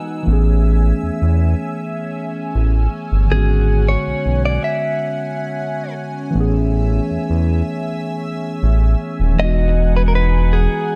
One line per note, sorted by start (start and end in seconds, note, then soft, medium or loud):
0.00 0.21 E3 medium
0.00 0.22 G#3 medium
0.00 0.24 B3 medium
0.00 0.24 D#4 medium
0.00 0.25 D#4 medium
0.00 0.26 F#4 medium
0.00 0.24 F#5 medium
0.00 0.24 G#5 medium
0.00 3.27 E6 medium
0.23 0.93 A1 loud
0.23 3.25 E3 medium
0.23 3.26 A3 medium
0.27 3.27 B3 medium
0.27 9.35 C#4 medium
0.27 3.29 C#4 medium
0.27 3.28 E5 medium
0.27 9.35 G#5 medium
0.33 3.30 G#4 medium
1.03 1.11 E2 soft
1.22 1.55 E2 loud
2.55 2.88 A1 loud
3.12 3.28 G1 medium
3.27 6.29 D3 medium
3.27 3.37 F#3 soft
3.27 6.32 F#5 medium
3.31 3.96 G#1 loud
3.31 6.31 B3 medium
3.31 6.32 C#4 medium
3.31 3.90 G#4 medium
3.36 6.33 G#3 medium
3.36 6.34 F#4 medium
3.89 4.41 C#5 medium
4.07 4.14 B1 soft
4.26 4.58 B1 loud
4.45 4.64 D5 loud
4.64 5.93 E5 loud
6.31 7.00 A1 loud
6.31 9.33 E3 medium
6.31 9.34 A3 medium
6.31 9.35 E6 medium
6.35 9.35 B3 medium
6.35 9.36 C#4 medium
6.35 9.36 E5 medium
6.40 9.37 G#4 medium
7.11 7.18 E2 soft
7.30 7.62 E2 medium
8.62 8.95 A1 loud
9.19 9.36 D#1 loud
9.35 10.67 E1 loud
9.35 10.96 E3 medium
9.35 10.96 G#3 medium
9.35 10.96 D#4 medium
9.35 10.96 F#5 medium
9.35 10.96 G#5 medium
9.40 10.96 B3 medium
9.40 10.96 D#4 medium
9.40 9.96 D#5 loud
9.44 10.96 F#4 medium
9.96 10.02 B4 medium
10.08 10.15 A#4 medium
10.15 10.54 B4 loud
10.53 10.96 G#4 medium